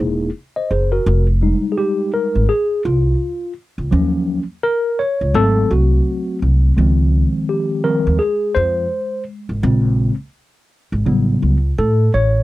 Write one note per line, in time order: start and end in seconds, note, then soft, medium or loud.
0.00 0.28 E1 medium
0.00 0.29 A#3 medium
0.00 0.29 D#4 medium
0.00 0.29 E4 medium
0.00 0.29 G#4 medium
0.56 0.70 C5 soft
0.56 0.70 D#5 medium
0.71 0.99 F#1 medium
0.71 0.91 G#4 soft
0.71 0.91 C5 medium
0.92 1.26 F#4 medium
0.92 1.26 A#4 medium
1.06 1.52 F1 loud
1.42 2.45 G3 medium
1.42 2.45 G#3 soft
1.42 2.45 D#4 medium
1.72 1.78 G#4 medium
1.78 2.11 G4 medium
2.14 2.50 A#4 medium
2.35 2.46 G#1 medium
2.49 2.82 G#4 loud
2.85 3.13 C2 medium
2.85 3.52 F4 medium
3.78 3.89 C#2 medium
3.91 4.37 D#2 loud
3.91 4.42 F3 medium
3.91 4.42 F#3 medium
3.91 4.43 C#4 medium
4.63 5.00 A#4 loud
4.99 5.36 C#5 medium
5.21 5.32 C#2 medium
5.34 5.63 G#1 loud
5.34 6.73 F#3 medium
5.34 6.74 A3 soft
5.34 6.74 C4 medium
5.34 5.72 A4 loud
5.71 5.99 C2 medium
5.71 6.38 F#4 medium
6.42 6.70 C2 medium
6.77 7.23 C#2 medium
6.77 7.83 D#3 medium
6.77 7.83 F3 medium
6.77 9.59 G#3 medium
6.77 7.84 C4 medium
7.49 7.86 G4 medium
7.84 8.17 D#3 soft
7.84 8.17 F3 soft
7.84 8.17 G3 soft
7.84 8.17 C4 soft
7.84 8.21 A#4 medium
8.07 8.18 D#2 medium
8.19 8.56 G#4 medium
8.55 8.84 F2 medium
8.55 9.23 C5 medium
9.49 9.60 G#1 medium
9.63 10.08 A#1 loud
9.63 10.14 C#3 medium
9.63 10.14 G#3 soft
9.63 10.14 C4 medium
10.92 11.03 G#1 medium
11.06 11.34 A1 medium
11.06 11.56 C#3 medium
11.06 11.56 F#3 medium
11.06 11.57 G3 medium
11.06 11.57 B3 medium
11.42 11.70 C#2 medium
11.78 12.06 A2 loud
11.78 12.11 A4 medium
12.14 12.42 A1 medium
12.14 12.43 C#5 medium